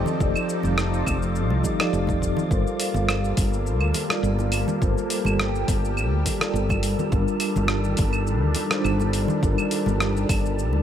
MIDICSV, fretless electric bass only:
0, 0, Header, 1, 2, 480
1, 0, Start_track
1, 0, Key_signature, -2, "minor"
1, 0, Tempo, 576923
1, 167, Time_signature, 4, 2, 24, 8
1, 9006, End_track
2, 0, Start_track
2, 0, Title_t, "Fretless electric bass"
2, 0, Program_c, 0, 35
2, 169, Note_on_c, 0, 29, 90
2, 275, Note_off_c, 0, 29, 0
2, 535, Note_on_c, 0, 29, 71
2, 856, Note_off_c, 0, 29, 0
2, 890, Note_on_c, 0, 29, 70
2, 1254, Note_off_c, 0, 29, 0
2, 1254, Note_on_c, 0, 36, 91
2, 1347, Note_off_c, 0, 36, 0
2, 1605, Note_on_c, 0, 29, 87
2, 1940, Note_off_c, 0, 29, 0
2, 2086, Note_on_c, 0, 31, 84
2, 2193, Note_off_c, 0, 31, 0
2, 2447, Note_on_c, 0, 31, 68
2, 2772, Note_off_c, 0, 31, 0
2, 2806, Note_on_c, 0, 31, 72
2, 3163, Note_off_c, 0, 31, 0
2, 3163, Note_on_c, 0, 38, 91
2, 3262, Note_off_c, 0, 38, 0
2, 3518, Note_on_c, 0, 31, 86
2, 3856, Note_off_c, 0, 31, 0
2, 4007, Note_on_c, 0, 31, 88
2, 4114, Note_off_c, 0, 31, 0
2, 4365, Note_on_c, 0, 31, 71
2, 4691, Note_off_c, 0, 31, 0
2, 4726, Note_on_c, 0, 31, 73
2, 5084, Note_off_c, 0, 31, 0
2, 5084, Note_on_c, 0, 38, 92
2, 5182, Note_off_c, 0, 38, 0
2, 5436, Note_on_c, 0, 31, 83
2, 5775, Note_off_c, 0, 31, 0
2, 5922, Note_on_c, 0, 31, 97
2, 6031, Note_off_c, 0, 31, 0
2, 6288, Note_on_c, 0, 31, 75
2, 6613, Note_off_c, 0, 31, 0
2, 6643, Note_on_c, 0, 31, 78
2, 7005, Note_off_c, 0, 31, 0
2, 7005, Note_on_c, 0, 38, 87
2, 7103, Note_off_c, 0, 38, 0
2, 7358, Note_on_c, 0, 31, 92
2, 7696, Note_off_c, 0, 31, 0
2, 7842, Note_on_c, 0, 31, 95
2, 7951, Note_off_c, 0, 31, 0
2, 8204, Note_on_c, 0, 31, 71
2, 8531, Note_off_c, 0, 31, 0
2, 8561, Note_on_c, 0, 31, 72
2, 8928, Note_off_c, 0, 31, 0
2, 8928, Note_on_c, 0, 38, 89
2, 9006, Note_off_c, 0, 38, 0
2, 9006, End_track
0, 0, End_of_file